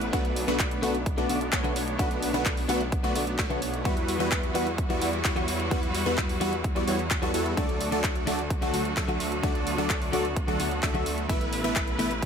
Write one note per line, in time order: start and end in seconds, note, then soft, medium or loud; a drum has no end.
0.00 0.11 A1 loud
0.00 0.10 A3 medium
0.00 3.81 A3 medium
0.00 0.10 B3 medium
0.00 3.81 D4 medium
0.00 0.10 E4 medium
0.00 0.10 B4 medium
0.00 0.10 F#5 medium
0.00 closed hi-hat soft
0.00 noise sweep medium
0.13 0.46 B1 loud
0.13 0.21 D3 medium
0.13 0.21 A3 medium
0.13 0.45 A3 loud
0.13 0.45 B3 medium
0.13 3.82 B3 medium
0.13 0.22 B3 medium
0.13 0.45 D4 medium
0.13 0.45 F#4 medium
0.13 0.22 F#4 medium
0.13 0.45 B4 loud
0.13 kick loud
0.13 closed hi-hat medium
0.25 closed hi-hat soft
0.36 open hi-hat loud
0.47 0.81 B1 loud
0.47 0.56 D3 medium
0.47 0.56 A3 medium
0.47 0.80 A3 loud
0.47 0.80 B3 medium
0.47 0.56 B3 medium
0.47 0.80 D4 medium
0.47 0.80 F#4 medium
0.47 0.57 F#4 medium
0.47 0.80 B4 loud
0.47 closed hi-hat soft
0.59 kick loud
0.59 clap loud
0.59 closed hi-hat medium
0.71 closed hi-hat soft
0.82 1.16 B1 loud
0.82 0.96 D3 loud
0.82 0.96 A3 loud
0.82 0.95 A3 loud
0.82 0.95 B3 medium
0.82 0.96 B3 medium
0.82 0.95 D4 medium
0.82 0.95 F#4 medium
0.82 0.96 F#4 loud
0.82 0.95 B4 loud
0.82 open hi-hat loud
0.95 closed hi-hat soft
1.06 kick loud
1.06 closed hi-hat medium
1.17 1.50 B1 loud
1.17 1.26 D3 medium
1.17 1.26 A3 medium
1.17 1.50 A3 medium
1.17 1.50 B3 medium
1.17 1.26 B3 medium
1.17 1.50 D4 medium
1.17 1.50 F#4 medium
1.17 1.26 F#4 medium
1.17 1.50 D5 medium
1.17 closed hi-hat soft
1.29 1.37 D3 medium
1.29 1.38 A3 medium
1.29 1.38 B3 medium
1.29 1.38 F#4 loud
1.29 open hi-hat loud
1.41 closed hi-hat soft
1.53 1.97 B1 loud
1.53 1.96 A3 medium
1.53 1.96 B3 medium
1.53 1.96 D4 medium
1.53 1.96 F#4 medium
1.53 1.96 C#5 loud
1.53 kick loud
1.53 clap loud
1.53 closed hi-hat medium
1.64 1.72 D3 loud
1.64 1.73 A3 medium
1.64 1.73 B3 loud
1.64 1.73 F#4 loud
1.64 closed hi-hat soft
1.76 open hi-hat loud
1.88 closed hi-hat soft
1.99 2.32 B1 loud
1.99 2.07 D3 medium
1.99 2.07 A3 medium
1.99 2.31 A3 loud
1.99 2.31 B3 medium
1.99 2.08 B3 medium
1.99 2.31 D4 medium
1.99 2.31 F#4 medium
1.99 2.08 F#4 medium
1.99 2.31 B4 loud
1.99 kick loud
1.99 closed hi-hat medium
2.11 closed hi-hat soft
2.23 open hi-hat loud
2.33 2.67 B1 loud
2.33 2.42 D3 medium
2.33 2.42 A3 medium
2.33 2.66 A3 loud
2.33 2.66 B3 medium
2.33 2.42 B3 medium
2.33 2.66 D4 medium
2.33 2.66 F#4 medium
2.33 2.43 F#4 medium
2.33 2.66 B4 loud
2.33 closed hi-hat soft
2.46 kick loud
2.46 clap loud
2.46 closed hi-hat medium
2.57 open hi-hat medium
2.68 3.02 B1 loud
2.68 2.82 D3 loud
2.68 2.82 A3 medium
2.68 2.81 A3 loud
2.68 2.81 B3 medium
2.68 2.82 B3 medium
2.68 2.81 D4 medium
2.68 2.81 F#4 medium
2.68 2.83 F#4 loud
2.68 2.81 B4 loud
2.68 open hi-hat loud
2.81 closed hi-hat soft
2.92 kick loud
2.92 closed hi-hat medium
3.03 3.36 B1 loud
3.03 3.12 D3 medium
3.03 3.12 A3 medium
3.03 3.36 A3 medium
3.03 3.36 B3 medium
3.03 3.12 B3 medium
3.03 3.36 D4 medium
3.03 3.36 F#4 medium
3.03 3.12 F#4 medium
3.03 3.36 D5 medium
3.03 closed hi-hat soft
3.15 3.23 D3 loud
3.15 3.24 A3 medium
3.15 3.24 B3 medium
3.15 3.24 F#4 loud
3.15 open hi-hat loud
3.27 closed hi-hat soft
3.39 3.83 B1 loud
3.39 3.82 A3 medium
3.39 3.82 B3 medium
3.39 3.82 D4 medium
3.39 3.82 F#4 medium
3.39 3.82 C#5 loud
3.39 kick loud
3.39 clap loud
3.39 closed hi-hat medium
3.50 3.58 D3 loud
3.50 3.59 A3 medium
3.50 3.59 B3 medium
3.50 3.59 F#4 medium
3.50 closed hi-hat soft
3.62 open hi-hat loud
3.74 closed hi-hat soft
3.84 4.18 E2 loud
3.84 3.93 E3 medium
3.84 4.17 G3 loud
3.84 7.54 G3 medium
3.84 3.93 G3 medium
3.84 4.17 B3 medium
3.84 3.94 B3 medium
3.84 4.17 E4 medium
3.84 7.54 E4 medium
3.84 4.17 F#4 medium
3.84 7.54 F#4 medium
3.84 3.94 F#4 medium
3.84 4.17 B4 loud
3.84 kick loud
3.84 closed hi-hat medium
3.97 closed hi-hat soft
4.08 open hi-hat loud
4.19 4.53 E2 loud
4.19 4.28 E3 medium
4.19 4.28 G3 medium
4.19 4.52 G3 loud
4.19 4.28 B3 medium
4.19 4.52 B3 medium
4.19 4.52 E4 medium
4.19 4.52 F#4 medium
4.19 4.29 F#4 medium
4.19 4.52 B4 loud
4.19 closed hi-hat soft
4.32 kick loud
4.32 clap loud
4.32 closed hi-hat medium
4.43 closed hi-hat soft
4.54 4.88 E2 loud
4.54 4.68 E3 loud
4.54 4.68 G3 medium
4.54 4.67 G3 loud
4.54 4.67 B3 medium
4.54 4.68 B3 medium
4.54 4.67 E4 medium
4.54 4.67 F#4 medium
4.54 4.69 F#4 loud
4.54 4.67 B4 loud
4.54 open hi-hat loud
4.67 closed hi-hat soft
4.78 kick loud
4.78 closed hi-hat medium
4.89 5.22 E2 loud
4.89 4.98 E3 medium
4.89 4.98 G3 medium
4.89 5.22 G3 medium
4.89 5.22 B3 medium
4.89 4.98 B3 medium
4.89 5.22 E4 medium
4.89 5.22 F#4 medium
4.89 4.98 F#4 medium
4.89 5.22 D5 medium
4.89 closed hi-hat soft
5.01 5.09 E3 loud
5.01 5.10 G3 medium
5.01 5.10 B3 medium
5.01 5.10 F#4 loud
5.01 open hi-hat loud
5.13 closed hi-hat soft
5.25 5.69 E2 loud
5.25 5.69 G3 medium
5.25 5.69 B3 medium
5.25 5.69 E4 medium
5.25 5.69 F#4 medium
5.25 5.69 C#5 medium
5.25 kick loud
5.25 clap loud
5.25 closed hi-hat medium
5.36 5.44 E3 loud
5.36 5.45 G3 loud
5.36 5.45 B3 medium
5.36 5.45 F#4 medium
5.36 closed hi-hat soft
5.48 open hi-hat loud
5.60 closed hi-hat soft
5.71 6.04 E2 loud
5.71 5.79 E3 medium
5.71 6.03 G3 loud
5.71 5.79 G3 medium
5.71 6.03 B3 medium
5.71 5.80 B3 medium
5.71 6.03 E4 medium
5.71 6.03 F#4 medium
5.71 5.80 F#4 medium
5.71 6.03 B4 loud
5.71 kick loud
5.71 closed hi-hat medium
5.83 closed hi-hat soft
5.95 open hi-hat loud
6.06 6.39 E2 loud
6.06 6.14 E3 medium
6.06 6.38 G3 loud
6.06 6.14 G3 medium
6.06 6.38 B3 medium
6.06 6.15 B3 medium
6.06 6.38 E4 medium
6.06 6.38 F#4 medium
6.06 6.15 F#4 medium
6.06 6.38 B4 loud
6.06 closed hi-hat soft
6.18 kick loud
6.18 clap loud
6.18 closed hi-hat medium
6.29 open hi-hat medium
6.40 6.74 E2 medium
6.40 6.54 E3 loud
6.40 6.53 G3 loud
6.40 6.54 G3 medium
6.40 6.53 B3 medium
6.40 6.54 B3 medium
6.40 6.53 E4 medium
6.40 6.53 F#4 medium
6.40 6.55 F#4 loud
6.40 6.53 B4 loud
6.40 open hi-hat loud
6.53 closed hi-hat soft
6.64 kick loud
6.64 closed hi-hat medium
6.75 6.85 E2 loud
6.75 6.84 E3 medium
6.75 6.84 G3 medium
6.75 6.85 G3 medium
6.75 6.85 B3 medium
6.75 6.84 B3 medium
6.75 6.85 E4 medium
6.75 6.85 F#4 medium
6.75 6.84 F#4 medium
6.75 6.85 D5 medium
6.75 closed hi-hat soft
6.87 7.20 E2 loud
6.87 6.96 E3 loud
6.87 6.96 G3 medium
6.87 6.99 G3 medium
6.87 6.99 B3 medium
6.87 6.96 B3 medium
6.87 6.99 E4 medium
6.87 6.99 F#4 medium
6.87 6.96 F#4 loud
6.87 6.99 C#5 loud
6.87 open hi-hat loud
6.99 closed hi-hat soft
7.11 kick loud
7.11 clap loud
7.11 closed hi-hat medium
7.22 7.32 E2 loud
7.22 7.30 E3 loud
7.22 7.31 G3 medium
7.22 7.31 B3 medium
7.22 7.31 E4 medium
7.22 7.31 F#4 medium
7.22 7.31 F#4 loud
7.22 7.31 A4 loud
7.22 closed hi-hat soft
7.34 7.55 E2 loud
7.34 7.55 G3 medium
7.34 7.55 B3 medium
7.34 7.55 E4 medium
7.34 7.55 F#4 medium
7.34 7.55 A4 medium
7.34 open hi-hat loud
7.46 closed hi-hat soft
7.57 7.90 D2 medium
7.57 7.65 D3 medium
7.57 11.26 D3 medium
7.57 7.66 F#3 medium
7.57 7.89 F#3 loud
7.57 7.89 A3 medium
7.57 9.42 A3 medium
7.57 7.66 A3 medium
7.57 7.89 D4 medium
7.57 11.26 F#4 medium
7.57 7.66 F#4 medium
7.57 7.89 A4 medium
7.57 7.89 D5 loud
7.57 kick loud
7.57 closed hi-hat medium
7.69 closed hi-hat soft
7.81 open hi-hat loud
7.92 8.25 D2 loud
7.92 8.00 D3 medium
7.92 8.24 F#3 loud
7.92 8.00 F#3 medium
7.92 8.24 A3 medium
7.92 8.01 A3 medium
7.92 8.24 D4 medium
7.92 8.01 F#4 medium
7.92 8.24 A4 medium
7.92 8.24 D5 loud
7.92 closed hi-hat soft
8.04 kick loud
8.04 clap loud
8.04 closed hi-hat medium
8.16 closed hi-hat soft
8.27 8.60 D2 loud
8.27 8.40 D3 loud
8.27 8.39 F#3 loud
8.27 8.40 F#3 medium
8.27 8.39 A3 medium
8.27 8.40 A3 medium
8.27 8.39 D4 medium
8.27 8.41 F#4 loud
8.27 8.39 A4 medium
8.27 8.39 D5 loud
8.27 open hi-hat loud
8.39 closed hi-hat soft
8.50 kick loud
8.50 closed hi-hat medium
8.61 8.95 D2 medium
8.61 8.70 D3 medium
8.61 8.70 F#3 medium
8.61 8.94 F#3 medium
8.61 8.94 A3 medium
8.61 8.70 A3 medium
8.61 8.94 D4 medium
8.61 8.71 F#4 medium
8.61 8.94 A4 medium
8.61 8.94 F#5 medium
8.61 closed hi-hat soft
8.73 8.82 D3 medium
8.73 8.82 F#3 medium
8.73 8.82 A3 medium
8.73 8.82 F#4 medium
8.73 open hi-hat loud
8.85 closed hi-hat soft
8.97 9.41 D2 loud
8.97 9.41 F#3 medium
8.97 9.41 A3 medium
8.97 9.41 D4 medium
8.97 9.41 A4 medium
8.97 9.41 E5 medium
8.97 kick loud
8.97 clap loud
8.97 closed hi-hat medium
9.08 9.16 D3 loud
9.08 9.17 F#3 medium
9.08 9.17 A3 medium
9.08 9.17 F#4 loud
9.08 closed hi-hat soft
9.20 open hi-hat loud
9.32 closed hi-hat soft
9.43 9.76 D2 loud
9.43 9.51 D3 medium
9.43 9.75 F#3 loud
9.43 9.52 F#3 medium
9.43 9.52 A3 medium
9.43 9.76 A3 medium
9.43 11.28 B3 medium
9.43 9.75 D4 medium
9.43 9.52 F#4 medium
9.43 9.75 A4 medium
9.43 9.76 D5 loud
9.43 kick loud
9.43 closed hi-hat medium
9.55 closed hi-hat soft
9.67 open hi-hat loud
9.78 10.11 D2 loud
9.78 9.86 D3 medium
9.78 9.86 F#3 medium
9.78 10.10 F#3 loud
9.78 10.10 A3 medium
9.78 9.87 A3 medium
9.78 10.10 D4 medium
9.78 9.87 F#4 medium
9.78 10.10 A4 medium
9.78 10.10 D5 loud
9.78 closed hi-hat soft
9.90 kick loud
9.90 clap loud
9.90 closed hi-hat medium
10.02 open hi-hat medium
10.12 10.46 D2 loud
10.12 10.26 D3 loud
10.12 10.26 F#3 medium
10.12 10.25 F#3 loud
10.12 10.25 A3 medium
10.12 10.26 A3 loud
10.12 10.25 D4 medium
10.12 10.27 F#4 loud
10.12 10.25 A4 medium
10.12 10.25 D5 loud
10.12 open hi-hat loud
10.25 closed hi-hat soft
10.36 kick loud
10.36 closed hi-hat medium
10.47 10.81 D2 loud
10.47 10.56 D3 medium
10.47 10.56 F#3 medium
10.47 10.80 F#3 medium
10.47 10.80 A3 medium
10.47 10.56 A3 medium
10.47 10.80 D4 medium
10.47 10.57 F#4 medium
10.47 10.80 A4 medium
10.47 10.80 F#5 medium
10.47 closed hi-hat soft
10.59 10.68 D3 medium
10.59 10.68 F#3 medium
10.59 10.68 A3 medium
10.59 10.68 F#4 medium
10.59 open hi-hat loud
10.71 closed hi-hat soft
10.83 11.27 D2 loud
10.83 11.27 F#3 medium
10.83 11.27 A3 medium
10.83 11.27 D4 medium
10.83 11.27 A4 medium
10.83 11.27 E5 loud
10.83 kick loud
10.83 clap loud
10.83 closed hi-hat medium
10.94 11.02 D3 loud
10.94 11.03 F#3 medium
10.94 11.03 A3 medium
10.94 11.03 F#4 loud
10.94 closed hi-hat soft
11.06 open hi-hat loud
11.18 closed hi-hat soft
11.29 11.62 A1 loud
11.29 11.37 B2 medium
11.29 11.38 E3 medium
11.29 12.26 A3 medium
11.29 11.62 A3 loud
11.29 11.38 A3 medium
11.29 11.62 B3 medium
11.29 12.26 E4 medium
11.29 11.62 E4 medium
11.29 11.38 E4 medium
11.29 12.26 B4 medium
11.29 11.62 B4 medium
11.29 11.62 E5 loud
11.29 kick loud
11.29 closed hi-hat medium
11.41 closed hi-hat soft
11.53 open hi-hat loud
11.64 11.97 A1 loud
11.64 11.72 B2 medium
11.64 11.73 E3 medium
11.64 11.96 A3 loud
11.64 11.73 A3 medium
11.64 11.96 B3 medium
11.64 11.96 E4 medium
11.64 11.73 E4 medium
11.64 11.96 B4 medium
11.64 11.96 E5 loud
11.64 closed hi-hat soft
11.76 kick loud
11.76 clap loud
11.76 closed hi-hat medium
11.88 closed hi-hat soft
11.99 12.26 A1 loud
11.99 12.12 B2 loud
11.99 12.12 E3 loud
11.99 12.11 A3 loud
11.99 12.13 A3 loud
11.99 12.11 B3 loud
11.99 12.11 E4 medium
11.99 12.13 E4 loud
11.99 12.11 B4 medium
11.99 12.11 E5 loud
11.99 open hi-hat loud
12.11 closed hi-hat soft
12.22 kick loud
12.22 closed hi-hat medium